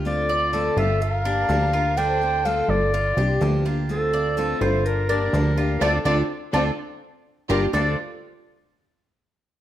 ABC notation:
X:1
M:4/4
L:1/8
Q:1/4=125
K:Dm
V:1 name="Clarinet"
d3 e f4 | g2 f d4 z | A3 c B B3 | d d z d z3 B |
d z6 z |]
V:2 name="Cuban tres"
F d A F2 D2 F | D2 A2 F G2 F- | F d A F2 D2 F | [DFA] [DFA] z [DFA] z3 [DFG] |
[DAc] z6 z |]
V:3 name="Violin section"
F3 G B4 | c2 A F4 z | C3 E D D3 | [CDF] [CDF] z [CDF] z3 [DFG] |
F z6 z |]
V:4 name="Steel-string acoustic guitar"
[D,A,CF] [A,CF] [D,A,CF]2 z [B,DG] [D,F,B,DG] [B,DG] | [D,A,CF] [A,CF] [D,A,CF]2 z [B,DG] [D,F,B,DG] [B,DG] | [D,A,CF] [A,CF] [D,A,CF]2 z [B,DG] [D,F,B,DG] [B,DG] | [A,CD] [A,CD] z [A,CD] z3 [G,B,D] |
[D,A,CF] z6 z |]
V:5 name="Analog synth bass" clef=bass
D,,3 G,,,3 D,,2- | D,,3 G,,,2 C,, D,,2- | D,,3 G,,,3 D,,2 | D,, D,, z D,, z3 G,,, |
D,, z6 z |]